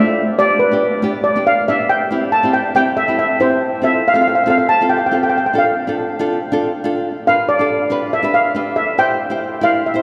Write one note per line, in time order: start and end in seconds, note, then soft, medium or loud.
0.00 0.22 A3 medium
0.00 0.22 D4 medium
0.00 0.22 F4 medium
0.00 0.27 E5 medium
0.39 0.58 B3 medium
0.39 0.59 D4 soft
0.39 0.59 G4 medium
0.39 0.48 D5 medium
0.59 1.00 B4 medium
0.71 0.91 B3 medium
0.71 0.91 D4 medium
0.71 0.92 G4 medium
1.02 1.22 B3 medium
1.02 1.23 D4 medium
1.02 1.23 G4 medium
1.24 1.46 D5 medium
1.36 1.55 B3 medium
1.36 1.55 D4 medium
1.36 1.56 G4 medium
1.47 1.69 F5 medium
1.68 1.94 B3 medium
1.68 1.94 D4 medium
1.68 1.95 G4 medium
1.68 1.90 E5 medium
1.89 2.34 G5 medium
2.11 2.30 C4 medium
2.11 2.31 E4 medium
2.11 2.31 G4 medium
2.32 2.54 A5 medium
2.43 2.63 C4 medium
2.43 2.63 E4 soft
2.43 2.64 G4 medium
2.53 2.74 G5 medium
2.75 2.94 C4 medium
2.75 2.95 E4 medium
2.75 2.95 G4 medium
2.75 2.98 G5 medium
2.97 3.18 E5 medium
3.08 3.27 C4 medium
3.08 3.28 E4 medium
3.08 3.28 G4 medium
3.19 3.41 E5 medium
3.40 3.66 C4 medium
3.40 3.66 E4 medium
3.40 3.66 G4 medium
3.40 3.71 C5 medium
3.82 4.02 C4 medium
3.82 4.02 F4 medium
3.82 4.02 A4 medium
3.82 4.06 E5 medium
4.08 4.13 F5 medium
4.14 4.34 C4 medium
4.14 4.34 F4 medium
4.14 4.35 A4 medium
4.14 4.20 F5 medium
4.21 4.27 F5 medium
4.28 4.34 F5 medium
4.35 4.42 F5 medium
4.44 4.66 C4 medium
4.44 4.66 F4 medium
4.44 4.67 A4 medium
4.44 4.49 F5 medium
4.50 4.57 F5 medium
4.58 4.65 F5 medium
4.69 4.91 A5 medium
4.81 5.00 C4 medium
4.81 5.00 F4 medium
4.81 5.00 A4 medium
4.89 4.97 G5 medium
4.98 5.05 G5 medium
5.06 5.13 G5 medium
5.11 5.37 C4 medium
5.11 5.38 F4 medium
5.11 5.38 A4 medium
5.11 5.22 G5 medium
5.23 5.28 G5 medium
5.29 5.36 G5 medium
5.38 5.45 G5 medium
5.46 5.52 G5 medium
5.53 5.73 D4 medium
5.53 5.74 F4 medium
5.53 5.74 A4 medium
5.58 5.96 F5 medium
5.87 6.06 D4 medium
5.87 6.07 F4 medium
5.87 6.07 A4 medium
6.19 6.39 D4 medium
6.19 6.39 F4 medium
6.19 6.39 A4 medium
6.52 6.71 D4 medium
6.52 6.71 F4 medium
6.52 6.72 A4 medium
6.84 7.10 D4 medium
6.84 7.10 F4 medium
6.84 7.10 A4 medium
7.27 7.46 D4 medium
7.27 7.47 G4 medium
7.27 7.47 B4 medium
7.27 7.37 F5 medium
7.49 8.14 D5 medium
7.59 7.78 D4 medium
7.59 7.79 G4 medium
7.59 7.79 A4 medium
7.90 8.10 D4 medium
7.90 8.10 G4 medium
7.90 8.10 B4 medium
8.13 8.33 E5 medium
8.23 8.42 D4 medium
8.23 8.43 G4 medium
8.23 8.43 B4 medium
8.34 8.74 F5 medium
8.55 8.81 D4 medium
8.55 8.81 G4 medium
8.55 8.81 B4 medium
8.76 8.86 E5 medium
8.98 9.17 E4 medium
8.98 9.18 G4 medium
8.98 9.18 C5 medium
8.98 9.65 G5 loud
9.30 9.49 E4 medium
9.30 9.50 G4 medium
9.30 9.50 C5 medium
9.61 9.81 E4 medium
9.61 9.82 G4 medium
9.61 9.82 D5 medium
9.61 9.73 F5 medium
9.86 10.02 E5 medium
9.94 10.02 E4 medium
9.94 10.02 G4 medium
9.94 10.02 C5 medium